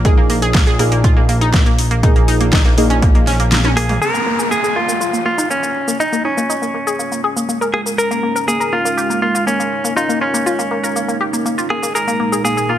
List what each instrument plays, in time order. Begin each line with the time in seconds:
Already playing: analog synth bass A#1
0.05 synth stab A#2 A#3 D#4 G#4, synth arpeggio sound G#4, kick, closed hi-hat
0.17 synth arpeggio sound A#3
0.30 synth arpeggio sound A#3, open hi-hat
0.42 synth arpeggio sound G#4, closed hi-hat
0.54 synth arpeggio sound A#3, kick, snare, closed hi-hat
0.67 synth arpeggio sound G#4, closed hi-hat
0.79 synth stab A#2 A#3 D#4 G#4, synth arpeggio sound A#3, cross-stick, open hi-hat
0.92 synth arpeggio sound A#3, closed hi-hat
1.04 synth arpeggio sound F4, kick, closed hi-hat
1.17 synth arpeggio sound A#3
1.29 synth arpeggio sound A#3, open hi-hat
1.41 synth arpeggio sound D#4, closed hi-hat
1.54 synth arpeggio sound A#3, kick, snare, closed hi-hat
1.66 synth arpeggio sound A#3, closed hi-hat
1.79 open hi-hat
1.91 synth arpeggio sound A#3, closed hi-hat
2.03 synth stab A#2 A#3 D#4 G#4, synth arpeggio sound D#4, kick, closed hi-hat
2.16 synth arpeggio sound A#3, closed hi-hat
2.28 synth arpeggio sound D#4, open hi-hat
2.41 synth arpeggio sound A#3, closed hi-hat
2.53 synth arpeggio sound D#4, kick, snare, closed hi-hat
2.65 synth arpeggio sound A#3, closed hi-hat
2.78 synth stab A#2 A#3 D#4 G#4, synth arpeggio sound A#3, open hi-hat
2.90 synth arpeggio sound C#4, closed hi-hat
3.02 synth arpeggio sound A#3, kick, closed hi-hat
3.15 synth arpeggio sound A#3, closed hi-hat
3.27 synth arpeggio sound C#4, snare, open hi-hat
3.40 synth arpeggio sound A#3, closed hi-hat
3.52 synth arpeggio sound A#3, snare, closed hi-hat, high tom
3.65 synth arpeggio sound C#4, cross-stick, closed hi-hat, high tom
3.77 synth arpeggio sound A#3, clean electric guitar G#4, open hi-hat
3.89 synth arpeggio sound A#3, mid tom, open hi-hat
4.02 analog synth pad G#3 C#4 F4 A#4, synth arpeggio sound G#4, clean electric guitar A#4, downlifter, shaker
4.14 synth arpeggio sound A#3, shaker
4.26 synth arpeggio sound A#3
4.39 synth arpeggio sound G#4, shaker
4.51 synth arpeggio sound A#3, clean electric guitar G#4, shaker
4.64 synth arpeggio sound G#4, shaker
4.76 synth arpeggio sound A#3, clean electric guitar F4
4.89 synth arpeggio sound A#3, shaker
5.01 synth arpeggio sound F4, shaker
5.13 synth arpeggio sound A#3, shaker
5.26 synth arpeggio sound A#3, clean electric guitar F4
5.38 synth arpeggio sound D#4, shaker
5.50 synth arpeggio sound A#3, clean electric guitar C#4, shaker
5.63 synth arpeggio sound A#3, shaker
5.88 synth arpeggio sound A#3, shaker
6.00 synth arpeggio sound D#4, clean electric guitar D#4, shaker
6.13 synth arpeggio sound A#3, shaker
6.25 clean electric guitar C#4, synth arpeggio sound D#4
6.37 synth arpeggio sound A#3, shaker
6.50 synth arpeggio sound D#4, shaker
6.62 synth arpeggio sound A#3, shaker
6.74 synth arpeggio sound A#3
6.87 synth arpeggio sound G#4, shaker
6.99 synth arpeggio sound A#3, shaker
7.12 synth arpeggio sound A#3, shaker
7.24 synth arpeggio sound G#4
7.37 synth arpeggio sound A#3, shaker
7.49 synth arpeggio sound A#3, shaker
7.61 synth arpeggio sound A#4, shaker
7.74 synth arpeggio sound A#3, clean electric guitar G#4
7.86 synth arpeggio sound A#3, shaker
7.98 analog synth pad D#4, synth arpeggio sound A#4, clean electric guitar A#4, shaker
8.11 synth arpeggio sound A#3, shaker
8.23 synth arpeggio sound A#3
8.36 synth arpeggio sound A#4, shaker
8.48 synth arpeggio sound A#3, clean electric guitar G#4, shaker
8.60 synth arpeggio sound A#4, shaker
8.73 synth arpeggio sound A#3, clean electric guitar F4
8.85 synth arpeggio sound A#3, shaker
8.98 synth arpeggio sound G4, shaker
9.10 synth arpeggio sound A#3, shaker
9.22 synth arpeggio sound A#3, clean electric guitar F4
9.35 synth arpeggio sound F4, shaker
9.47 synth arpeggio sound A#3, clean electric guitar C#4, shaker
9.60 synth arpeggio sound A#3, shaker
9.84 synth arpeggio sound A#3, shaker
9.97 clean electric guitar D#4, synth arpeggio sound F4, shaker
10.09 synth arpeggio sound A#3, shaker
10.21 clean electric guitar C#4, synth arpeggio sound F4
10.34 synth arpeggio sound A#3, shaker
10.46 synth arpeggio sound F4, shaker
10.59 synth arpeggio sound A#3, shaker
10.71 synth arpeggio sound A#3
10.84 synth arpeggio sound A#4, shaker
10.96 synth arpeggio sound A#3, shaker
11.08 synth arpeggio sound A#3, shaker
11.21 synth arpeggio sound G4
11.33 synth arpeggio sound A#3, shaker
11.45 synth arpeggio sound A#3, shaker
11.58 synth arpeggio sound F4, shaker
11.70 synth arpeggio sound A#3, clean electric guitar G#4
11.83 synth arpeggio sound A#3, shaker
11.95 analog synth pad A#2 G#3 A#3, synth arpeggio sound G#4, clean electric guitar A#4, shaker
12.08 synth arpeggio sound A#3, shaker
12.20 synth arpeggio sound A#3
12.32 synth arpeggio sound G#4, shaker
12.45 synth arpeggio sound A#3, clean electric guitar G#4, shaker
12.57 synth arpeggio sound G#4, shaker
12.69 synth arpeggio sound A#3, clean electric guitar F4